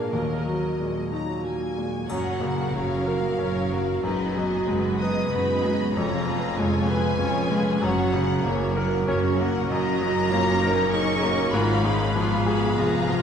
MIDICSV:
0, 0, Header, 1, 8, 480
1, 0, Start_track
1, 0, Key_signature, 6, "major"
1, 0, Tempo, 651466
1, 86, Time_signature, 3, 2, 24, 8
1, 3924, Tempo, 621762
1, 7296, Key_signature, -6, "minor"
1, 10019, End_track
2, 0, Start_track
2, 0, Title_t, "Violin section"
2, 0, Program_c, 0, 48
2, 0, Note_on_c, 0, 77, 55
2, 77, Note_on_c, 0, 75, 44
2, 93, Note_off_c, 0, 77, 0
2, 798, Note_off_c, 0, 75, 0
2, 811, Note_on_c, 0, 82, 40
2, 1035, Note_off_c, 0, 82, 0
2, 1063, Note_on_c, 0, 80, 42
2, 1542, Note_off_c, 0, 80, 0
2, 1543, Note_on_c, 0, 78, 60
2, 2014, Note_off_c, 0, 78, 0
2, 2021, Note_on_c, 0, 77, 64
2, 2977, Note_off_c, 0, 77, 0
2, 2977, Note_on_c, 0, 75, 50
2, 3442, Note_off_c, 0, 75, 0
2, 3682, Note_on_c, 0, 87, 58
2, 3903, Note_off_c, 0, 87, 0
2, 3926, Note_on_c, 0, 83, 62
2, 4405, Note_on_c, 0, 82, 65
2, 4407, Note_off_c, 0, 83, 0
2, 4883, Note_off_c, 0, 82, 0
2, 4885, Note_on_c, 0, 80, 81
2, 5843, Note_on_c, 0, 78, 68
2, 5855, Note_off_c, 0, 80, 0
2, 6330, Note_off_c, 0, 78, 0
2, 7296, Note_on_c, 0, 82, 95
2, 8217, Note_off_c, 0, 82, 0
2, 8257, Note_on_c, 0, 85, 84
2, 8704, Note_on_c, 0, 83, 72
2, 8721, Note_off_c, 0, 85, 0
2, 9417, Note_off_c, 0, 83, 0
2, 9426, Note_on_c, 0, 83, 72
2, 9669, Note_off_c, 0, 83, 0
2, 9674, Note_on_c, 0, 82, 78
2, 10019, Note_off_c, 0, 82, 0
2, 10019, End_track
3, 0, Start_track
3, 0, Title_t, "Violin section"
3, 0, Program_c, 1, 48
3, 1535, Note_on_c, 1, 70, 33
3, 1535, Note_on_c, 1, 73, 35
3, 1762, Note_off_c, 1, 70, 0
3, 1762, Note_off_c, 1, 73, 0
3, 1778, Note_on_c, 1, 66, 31
3, 1783, Note_on_c, 1, 70, 31
3, 2020, Note_off_c, 1, 66, 0
3, 2020, Note_off_c, 1, 70, 0
3, 2024, Note_on_c, 1, 73, 34
3, 2029, Note_on_c, 1, 70, 35
3, 2254, Note_off_c, 1, 70, 0
3, 2262, Note_off_c, 1, 73, 0
3, 2263, Note_on_c, 1, 66, 31
3, 2263, Note_on_c, 1, 70, 30
3, 2496, Note_off_c, 1, 70, 0
3, 2501, Note_off_c, 1, 66, 0
3, 2502, Note_on_c, 1, 73, 35
3, 2504, Note_on_c, 1, 70, 39
3, 2724, Note_off_c, 1, 73, 0
3, 2725, Note_off_c, 1, 70, 0
3, 2745, Note_on_c, 1, 70, 38
3, 2747, Note_on_c, 1, 66, 35
3, 2966, Note_off_c, 1, 66, 0
3, 2975, Note_on_c, 1, 66, 39
3, 2978, Note_on_c, 1, 71, 35
3, 2980, Note_off_c, 1, 70, 0
3, 3196, Note_off_c, 1, 66, 0
3, 3198, Note_off_c, 1, 71, 0
3, 3210, Note_on_c, 1, 68, 34
3, 3210, Note_on_c, 1, 75, 34
3, 3450, Note_off_c, 1, 68, 0
3, 3450, Note_off_c, 1, 75, 0
3, 3450, Note_on_c, 1, 66, 39
3, 3453, Note_on_c, 1, 71, 38
3, 3680, Note_on_c, 1, 75, 37
3, 3688, Note_off_c, 1, 66, 0
3, 3689, Note_off_c, 1, 71, 0
3, 3689, Note_on_c, 1, 68, 34
3, 3918, Note_off_c, 1, 75, 0
3, 3918, Note_on_c, 1, 71, 38
3, 3920, Note_on_c, 1, 66, 38
3, 3923, Note_off_c, 1, 68, 0
3, 4145, Note_off_c, 1, 71, 0
3, 4146, Note_off_c, 1, 66, 0
3, 4152, Note_on_c, 1, 68, 37
3, 4155, Note_on_c, 1, 75, 38
3, 4393, Note_on_c, 1, 73, 44
3, 4396, Note_on_c, 1, 65, 41
3, 4399, Note_off_c, 1, 68, 0
3, 4401, Note_off_c, 1, 75, 0
3, 4621, Note_off_c, 1, 73, 0
3, 4623, Note_off_c, 1, 65, 0
3, 4639, Note_on_c, 1, 71, 38
3, 4640, Note_on_c, 1, 68, 41
3, 4880, Note_off_c, 1, 71, 0
3, 4881, Note_off_c, 1, 68, 0
3, 4881, Note_on_c, 1, 73, 44
3, 4883, Note_on_c, 1, 65, 45
3, 5119, Note_on_c, 1, 68, 41
3, 5119, Note_on_c, 1, 71, 41
3, 5122, Note_off_c, 1, 73, 0
3, 5123, Note_off_c, 1, 65, 0
3, 5363, Note_off_c, 1, 68, 0
3, 5364, Note_off_c, 1, 71, 0
3, 5368, Note_on_c, 1, 73, 46
3, 5369, Note_on_c, 1, 65, 43
3, 5594, Note_off_c, 1, 65, 0
3, 5594, Note_off_c, 1, 73, 0
3, 5606, Note_on_c, 1, 71, 41
3, 5610, Note_on_c, 1, 68, 46
3, 5852, Note_off_c, 1, 71, 0
3, 5854, Note_off_c, 1, 68, 0
3, 5857, Note_on_c, 1, 73, 46
3, 5860, Note_off_c, 1, 73, 0
3, 5860, Note_on_c, 1, 73, 43
3, 6082, Note_off_c, 1, 73, 0
3, 6094, Note_on_c, 1, 70, 42
3, 6098, Note_on_c, 1, 78, 45
3, 6328, Note_on_c, 1, 73, 47
3, 6330, Note_off_c, 1, 73, 0
3, 6330, Note_on_c, 1, 73, 47
3, 6334, Note_off_c, 1, 70, 0
3, 6336, Note_off_c, 1, 78, 0
3, 6564, Note_on_c, 1, 70, 42
3, 6564, Note_on_c, 1, 78, 43
3, 6572, Note_off_c, 1, 73, 0
3, 6811, Note_off_c, 1, 70, 0
3, 6811, Note_off_c, 1, 78, 0
3, 6814, Note_on_c, 1, 73, 50
3, 6815, Note_off_c, 1, 73, 0
3, 6815, Note_on_c, 1, 73, 49
3, 7039, Note_off_c, 1, 73, 0
3, 7054, Note_on_c, 1, 70, 49
3, 7055, Note_on_c, 1, 78, 50
3, 7289, Note_off_c, 1, 70, 0
3, 7294, Note_on_c, 1, 75, 54
3, 7295, Note_off_c, 1, 78, 0
3, 7298, Note_on_c, 1, 70, 53
3, 7742, Note_off_c, 1, 75, 0
3, 7759, Note_on_c, 1, 73, 53
3, 8223, Note_on_c, 1, 75, 56
3, 8240, Note_off_c, 1, 73, 0
3, 8704, Note_off_c, 1, 75, 0
3, 8705, Note_on_c, 1, 77, 51
3, 9165, Note_off_c, 1, 70, 0
3, 9175, Note_off_c, 1, 77, 0
3, 9175, Note_on_c, 1, 68, 51
3, 9185, Note_on_c, 1, 77, 52
3, 9658, Note_off_c, 1, 68, 0
3, 9667, Note_on_c, 1, 68, 50
3, 10019, Note_off_c, 1, 68, 0
3, 10019, Note_off_c, 1, 77, 0
3, 10019, End_track
4, 0, Start_track
4, 0, Title_t, "Viola section"
4, 0, Program_c, 2, 48
4, 0, Note_on_c, 2, 58, 41
4, 0, Note_on_c, 2, 68, 39
4, 84, Note_on_c, 2, 54, 33
4, 86, Note_off_c, 2, 58, 0
4, 86, Note_on_c, 2, 70, 33
4, 88, Note_off_c, 2, 68, 0
4, 518, Note_off_c, 2, 54, 0
4, 528, Note_off_c, 2, 70, 0
4, 575, Note_on_c, 2, 56, 41
4, 800, Note_off_c, 2, 56, 0
4, 822, Note_on_c, 2, 54, 30
4, 1043, Note_on_c, 2, 58, 32
4, 1058, Note_off_c, 2, 54, 0
4, 1289, Note_off_c, 2, 58, 0
4, 1292, Note_on_c, 2, 56, 29
4, 1536, Note_off_c, 2, 56, 0
4, 1541, Note_on_c, 2, 61, 41
4, 1544, Note_on_c, 2, 54, 41
4, 1765, Note_off_c, 2, 61, 0
4, 1767, Note_off_c, 2, 54, 0
4, 1774, Note_on_c, 2, 58, 32
4, 1778, Note_off_c, 2, 58, 0
4, 1778, Note_on_c, 2, 58, 35
4, 2020, Note_off_c, 2, 58, 0
4, 2022, Note_on_c, 2, 54, 36
4, 2023, Note_on_c, 2, 61, 40
4, 2261, Note_off_c, 2, 54, 0
4, 2262, Note_off_c, 2, 61, 0
4, 2262, Note_on_c, 2, 58, 33
4, 2264, Note_off_c, 2, 58, 0
4, 2264, Note_on_c, 2, 58, 30
4, 2498, Note_on_c, 2, 54, 35
4, 2502, Note_off_c, 2, 58, 0
4, 2502, Note_on_c, 2, 61, 39
4, 2722, Note_off_c, 2, 54, 0
4, 2723, Note_off_c, 2, 61, 0
4, 2742, Note_on_c, 2, 58, 36
4, 2973, Note_on_c, 2, 56, 43
4, 2976, Note_on_c, 2, 63, 42
4, 2979, Note_off_c, 2, 58, 0
4, 3196, Note_off_c, 2, 56, 0
4, 3197, Note_off_c, 2, 63, 0
4, 3207, Note_on_c, 2, 59, 36
4, 3207, Note_on_c, 2, 66, 36
4, 3448, Note_off_c, 2, 59, 0
4, 3448, Note_off_c, 2, 66, 0
4, 3448, Note_on_c, 2, 63, 39
4, 3452, Note_on_c, 2, 56, 43
4, 3686, Note_on_c, 2, 59, 36
4, 3686, Note_on_c, 2, 66, 33
4, 3687, Note_off_c, 2, 63, 0
4, 3689, Note_off_c, 2, 56, 0
4, 3913, Note_on_c, 2, 63, 43
4, 3916, Note_on_c, 2, 56, 38
4, 3921, Note_off_c, 2, 59, 0
4, 3921, Note_off_c, 2, 66, 0
4, 4143, Note_off_c, 2, 63, 0
4, 4144, Note_off_c, 2, 56, 0
4, 4159, Note_on_c, 2, 59, 42
4, 4160, Note_on_c, 2, 66, 43
4, 4397, Note_on_c, 2, 61, 49
4, 4401, Note_on_c, 2, 56, 44
4, 4403, Note_off_c, 2, 59, 0
4, 4403, Note_off_c, 2, 66, 0
4, 4623, Note_off_c, 2, 61, 0
4, 4625, Note_off_c, 2, 56, 0
4, 4633, Note_on_c, 2, 59, 42
4, 4637, Note_on_c, 2, 65, 44
4, 4876, Note_on_c, 2, 61, 44
4, 4878, Note_off_c, 2, 59, 0
4, 4879, Note_off_c, 2, 65, 0
4, 4879, Note_on_c, 2, 56, 45
4, 5111, Note_on_c, 2, 65, 39
4, 5112, Note_on_c, 2, 59, 39
4, 5120, Note_off_c, 2, 61, 0
4, 5121, Note_off_c, 2, 56, 0
4, 5353, Note_on_c, 2, 61, 46
4, 5354, Note_on_c, 2, 56, 46
4, 5359, Note_off_c, 2, 65, 0
4, 5360, Note_off_c, 2, 59, 0
4, 5586, Note_off_c, 2, 56, 0
4, 5586, Note_off_c, 2, 61, 0
4, 5605, Note_on_c, 2, 59, 43
4, 5607, Note_on_c, 2, 65, 41
4, 5845, Note_on_c, 2, 61, 56
4, 5848, Note_on_c, 2, 66, 51
4, 5851, Note_off_c, 2, 59, 0
4, 5852, Note_off_c, 2, 65, 0
4, 6074, Note_off_c, 2, 61, 0
4, 6076, Note_off_c, 2, 66, 0
4, 6098, Note_on_c, 2, 58, 47
4, 6100, Note_on_c, 2, 61, 47
4, 6320, Note_off_c, 2, 61, 0
4, 6328, Note_on_c, 2, 66, 53
4, 6329, Note_on_c, 2, 61, 50
4, 6336, Note_off_c, 2, 58, 0
4, 6562, Note_off_c, 2, 61, 0
4, 6571, Note_on_c, 2, 61, 43
4, 6572, Note_off_c, 2, 66, 0
4, 6573, Note_on_c, 2, 58, 47
4, 6796, Note_off_c, 2, 61, 0
4, 6805, Note_on_c, 2, 61, 50
4, 6808, Note_on_c, 2, 66, 51
4, 6816, Note_off_c, 2, 58, 0
4, 7034, Note_off_c, 2, 61, 0
4, 7035, Note_off_c, 2, 66, 0
4, 7044, Note_on_c, 2, 58, 49
4, 7047, Note_on_c, 2, 61, 50
4, 7275, Note_off_c, 2, 58, 0
4, 7284, Note_on_c, 2, 58, 58
4, 7287, Note_on_c, 2, 66, 58
4, 7291, Note_off_c, 2, 61, 0
4, 7512, Note_off_c, 2, 58, 0
4, 7526, Note_on_c, 2, 61, 67
4, 7738, Note_off_c, 2, 66, 0
4, 7760, Note_on_c, 2, 65, 67
4, 8005, Note_off_c, 2, 65, 0
4, 8009, Note_on_c, 2, 63, 59
4, 8246, Note_off_c, 2, 63, 0
4, 8252, Note_on_c, 2, 68, 63
4, 8483, Note_on_c, 2, 66, 56
4, 8484, Note_off_c, 2, 68, 0
4, 8706, Note_on_c, 2, 65, 64
4, 8717, Note_off_c, 2, 66, 0
4, 8944, Note_off_c, 2, 65, 0
4, 8952, Note_on_c, 2, 63, 59
4, 9190, Note_off_c, 2, 61, 0
4, 9193, Note_on_c, 2, 59, 59
4, 9194, Note_off_c, 2, 63, 0
4, 9197, Note_on_c, 2, 65, 59
4, 9434, Note_off_c, 2, 65, 0
4, 9439, Note_on_c, 2, 66, 55
4, 9678, Note_on_c, 2, 68, 56
4, 9680, Note_off_c, 2, 66, 0
4, 9914, Note_off_c, 2, 68, 0
4, 9917, Note_on_c, 2, 65, 58
4, 10019, Note_off_c, 2, 59, 0
4, 10019, Note_off_c, 2, 65, 0
4, 10019, End_track
5, 0, Start_track
5, 0, Title_t, "Grand piano"
5, 0, Program_c, 3, 0
5, 0, Control_c, 3, 64, 127
5, 0, Note_on_c, 3, 46, 47
5, 0, Note_on_c, 3, 62, 29
5, 0, Note_on_c, 3, 70, 30
5, 79, Note_off_c, 3, 46, 0
5, 95, Note_on_c, 3, 39, 35
5, 102, Control_c, 3, 64, 0
5, 103, Note_off_c, 3, 70, 0
5, 108, Note_off_c, 3, 62, 0
5, 248, Control_c, 3, 64, 127
5, 334, Note_on_c, 3, 54, 31
5, 587, Note_on_c, 3, 46, 29
5, 722, Note_off_c, 3, 54, 0
5, 826, Note_on_c, 3, 63, 26
5, 966, Note_off_c, 3, 46, 0
5, 1058, Note_on_c, 3, 54, 24
5, 1203, Note_off_c, 3, 63, 0
5, 1304, Note_on_c, 3, 46, 26
5, 1443, Note_off_c, 3, 54, 0
5, 1513, Note_off_c, 3, 39, 0
5, 1542, Note_on_c, 3, 42, 45
5, 1543, Note_off_c, 3, 46, 0
5, 1555, Control_c, 3, 64, 0
5, 1682, Control_c, 3, 64, 127
5, 1775, Note_on_c, 3, 49, 36
5, 2024, Note_on_c, 3, 54, 41
5, 2162, Note_off_c, 3, 49, 0
5, 2253, Note_on_c, 3, 70, 36
5, 2406, Note_off_c, 3, 54, 0
5, 2494, Note_on_c, 3, 61, 36
5, 2640, Note_off_c, 3, 70, 0
5, 2740, Note_on_c, 3, 54, 34
5, 2879, Note_off_c, 3, 61, 0
5, 2949, Note_off_c, 3, 42, 0
5, 2972, Note_on_c, 3, 42, 50
5, 2977, Note_off_c, 3, 54, 0
5, 2993, Control_c, 3, 64, 0
5, 3126, Control_c, 3, 64, 127
5, 3213, Note_on_c, 3, 54, 44
5, 3444, Note_on_c, 3, 56, 42
5, 3594, Note_off_c, 3, 54, 0
5, 3691, Note_on_c, 3, 71, 38
5, 3826, Note_off_c, 3, 56, 0
5, 3929, Note_on_c, 3, 59, 40
5, 4069, Note_off_c, 3, 71, 0
5, 4173, Note_on_c, 3, 56, 36
5, 4312, Note_off_c, 3, 59, 0
5, 4372, Note_off_c, 3, 42, 0
5, 4409, Note_off_c, 3, 56, 0
5, 4419, Control_c, 3, 64, 0
5, 4420, Note_on_c, 3, 41, 51
5, 4549, Control_c, 3, 64, 127
5, 4658, Note_on_c, 3, 53, 44
5, 4898, Note_on_c, 3, 56, 49
5, 5034, Note_off_c, 3, 53, 0
5, 5139, Note_on_c, 3, 71, 43
5, 5276, Note_off_c, 3, 56, 0
5, 5363, Note_on_c, 3, 61, 45
5, 5520, Note_off_c, 3, 71, 0
5, 5606, Note_on_c, 3, 56, 44
5, 5755, Note_off_c, 3, 61, 0
5, 5830, Note_off_c, 3, 41, 0
5, 5845, Note_on_c, 3, 42, 60
5, 5852, Note_off_c, 3, 56, 0
5, 5870, Control_c, 3, 64, 0
5, 6011, Control_c, 3, 64, 127
5, 6091, Note_on_c, 3, 49, 50
5, 6341, Note_on_c, 3, 58, 52
5, 6476, Note_off_c, 3, 49, 0
5, 6581, Note_on_c, 3, 70, 54
5, 6723, Note_off_c, 3, 58, 0
5, 6823, Note_on_c, 3, 61, 55
5, 6964, Note_off_c, 3, 70, 0
5, 7067, Note_on_c, 3, 58, 43
5, 7203, Note_off_c, 3, 61, 0
5, 7260, Note_off_c, 3, 42, 0
5, 7301, Note_off_c, 3, 58, 0
5, 7311, Control_c, 3, 64, 0
5, 7312, Note_on_c, 3, 42, 61
5, 7437, Control_c, 3, 64, 127
5, 7546, Note_on_c, 3, 54, 57
5, 7781, Note_on_c, 3, 58, 58
5, 7922, Note_off_c, 3, 54, 0
5, 8022, Note_on_c, 3, 70, 54
5, 8157, Note_off_c, 3, 58, 0
5, 8248, Note_on_c, 3, 63, 50
5, 8393, Note_off_c, 3, 70, 0
5, 8481, Note_on_c, 3, 58, 49
5, 8622, Note_off_c, 3, 63, 0
5, 8693, Note_off_c, 3, 42, 0
5, 8716, Note_off_c, 3, 58, 0
5, 8720, Note_on_c, 3, 44, 67
5, 8730, Control_c, 3, 64, 0
5, 8868, Control_c, 3, 64, 127
5, 8955, Note_on_c, 3, 56, 54
5, 9196, Note_on_c, 3, 53, 59
5, 9341, Note_off_c, 3, 56, 0
5, 9435, Note_on_c, 3, 68, 55
5, 9584, Note_off_c, 3, 53, 0
5, 9692, Note_on_c, 3, 65, 54
5, 9822, Note_off_c, 3, 68, 0
5, 9921, Note_on_c, 3, 53, 44
5, 10019, Note_off_c, 3, 44, 0
5, 10019, Note_off_c, 3, 53, 0
5, 10019, Note_off_c, 3, 65, 0
5, 10019, End_track
6, 0, Start_track
6, 0, Title_t, "Cello section"
6, 0, Program_c, 4, 48
6, 1538, Note_on_c, 4, 42, 41
6, 1964, Note_off_c, 4, 42, 0
6, 2022, Note_on_c, 4, 42, 49
6, 2444, Note_off_c, 4, 42, 0
6, 2499, Note_on_c, 4, 42, 48
6, 2921, Note_off_c, 4, 42, 0
6, 2979, Note_on_c, 4, 42, 47
6, 3397, Note_off_c, 4, 42, 0
6, 3443, Note_on_c, 4, 42, 49
6, 3864, Note_off_c, 4, 42, 0
6, 3921, Note_on_c, 4, 42, 51
6, 4348, Note_off_c, 4, 42, 0
6, 4402, Note_on_c, 4, 41, 46
6, 4825, Note_off_c, 4, 41, 0
6, 4878, Note_on_c, 4, 41, 55
6, 5306, Note_off_c, 4, 41, 0
6, 5359, Note_on_c, 4, 41, 50
6, 5792, Note_off_c, 4, 41, 0
6, 5850, Note_on_c, 4, 42, 47
6, 6276, Note_off_c, 4, 42, 0
6, 6333, Note_on_c, 4, 42, 60
6, 6759, Note_off_c, 4, 42, 0
6, 6820, Note_on_c, 4, 42, 66
6, 7241, Note_off_c, 4, 42, 0
6, 7300, Note_on_c, 4, 42, 50
6, 8687, Note_off_c, 4, 42, 0
6, 8721, Note_on_c, 4, 44, 50
6, 9663, Note_off_c, 4, 44, 0
6, 9681, Note_on_c, 4, 41, 51
6, 10019, Note_off_c, 4, 41, 0
6, 10019, End_track
7, 0, Start_track
7, 0, Title_t, "Double bass section"
7, 0, Program_c, 5, 48
7, 1531, Note_on_c, 5, 30, 47
7, 1961, Note_off_c, 5, 30, 0
7, 2017, Note_on_c, 5, 30, 51
7, 2441, Note_off_c, 5, 30, 0
7, 2498, Note_on_c, 5, 30, 44
7, 2920, Note_off_c, 5, 30, 0
7, 2965, Note_on_c, 5, 30, 46
7, 3390, Note_off_c, 5, 30, 0
7, 3443, Note_on_c, 5, 30, 54
7, 3863, Note_off_c, 5, 30, 0
7, 3916, Note_on_c, 5, 30, 47
7, 4345, Note_off_c, 5, 30, 0
7, 4399, Note_on_c, 5, 29, 53
7, 4824, Note_off_c, 5, 29, 0
7, 4880, Note_on_c, 5, 29, 53
7, 5307, Note_off_c, 5, 29, 0
7, 5359, Note_on_c, 5, 29, 54
7, 5793, Note_off_c, 5, 29, 0
7, 5851, Note_on_c, 5, 30, 57
7, 6277, Note_off_c, 5, 30, 0
7, 6338, Note_on_c, 5, 30, 65
7, 6762, Note_off_c, 5, 30, 0
7, 6813, Note_on_c, 5, 30, 54
7, 7238, Note_off_c, 5, 30, 0
7, 7289, Note_on_c, 5, 30, 63
7, 8682, Note_off_c, 5, 30, 0
7, 8714, Note_on_c, 5, 32, 59
7, 9659, Note_off_c, 5, 32, 0
7, 9676, Note_on_c, 5, 29, 49
7, 10019, Note_off_c, 5, 29, 0
7, 10019, End_track
8, 0, Start_track
8, 0, Title_t, "Drums"
8, 1544, Note_on_c, 9, 81, 27
8, 1618, Note_off_c, 9, 81, 0
8, 10019, End_track
0, 0, End_of_file